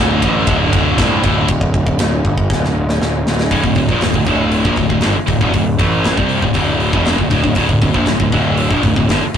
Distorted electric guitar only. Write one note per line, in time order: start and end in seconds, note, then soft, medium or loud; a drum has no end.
0.00 0.21 D2 loud
0.00 0.22 A2 medium
0.00 0.22 D3 loud
0.22 0.46 D2 medium
0.22 0.46 A2 medium
0.22 0.47 D3 medium
0.48 0.97 D2 loud
0.48 0.98 A2 medium
0.48 0.98 D3 loud
0.98 1.21 D2 medium
0.98 1.22 A2 medium
0.98 1.23 D3 medium
1.23 1.47 D2 medium
1.23 1.47 A2 medium
1.23 1.47 D3 medium
3.52 3.64 D2 loud
3.52 3.63 A2 loud
3.65 3.77 D2 medium
3.65 3.77 A2 medium
3.78 3.90 D2 medium
3.78 3.90 A2 medium
3.91 4.02 A#2 medium
3.91 4.02 F3 medium
4.03 4.14 D2 medium
4.03 4.15 A2 medium
4.15 4.26 D2 medium
4.15 4.26 A2 medium
4.27 4.65 D2 medium
4.27 4.65 A2 medium
4.27 4.65 D3 medium
4.65 4.77 A#2 medium
4.65 4.77 F3 medium
4.78 4.88 D2 medium
4.78 4.89 A2 medium
4.89 5.02 D2 medium
4.89 5.02 A2 medium
5.02 5.15 G2 loud
5.02 5.15 D3 loud
5.16 muted distorted electric guitar stroke medium
5.27 5.41 D2 medium
5.27 5.41 A2 medium
5.41 5.53 E2 medium
5.41 5.53 B2 loud
5.54 5.74 D2 medium
5.54 5.74 A2 medium
5.79 6.16 A2 medium
5.79 6.17 E3 loud
5.79 6.17 A3 loud
6.18 6.42 C3 loud
6.18 6.42 G3 medium
6.18 6.43 C4 loud
6.43 6.53 D2 medium
6.43 6.54 A2 medium
6.54 6.92 D2 loud
6.54 6.92 A2 medium
6.54 6.93 D3 loud
6.92 7.18 E2 medium
6.92 7.18 B2 loud
6.92 7.18 E3 loud
7.20 7.29 D2 medium
7.20 7.30 A2 medium
7.30 7.43 D2 medium
7.30 7.44 A2 medium
7.45 7.55 D2 medium
7.45 7.56 A2 medium
7.56 7.69 D2 loud
7.56 7.68 A2 loud
7.70 7.81 D2 medium
7.70 7.82 A2 medium
7.82 7.94 D2 medium
7.82 7.95 A2 medium
7.94 8.07 A#2 medium
7.94 8.07 F3 loud
8.07 8.19 D2 medium
8.07 8.19 A2 medium
8.20 8.31 D2 medium
8.20 8.31 A2 medium
8.32 8.70 D2 medium
8.32 8.70 A2 medium
8.32 8.70 D3 loud
8.72 8.84 A#2 medium
8.72 8.84 F3 medium
8.85 8.96 D2 medium
8.85 8.96 A2 medium
8.97 9.10 D2 medium
8.97 9.10 A2 medium
9.10 9.22 G2 medium
9.10 9.22 D3 loud
9.23 muted distorted electric guitar stroke medium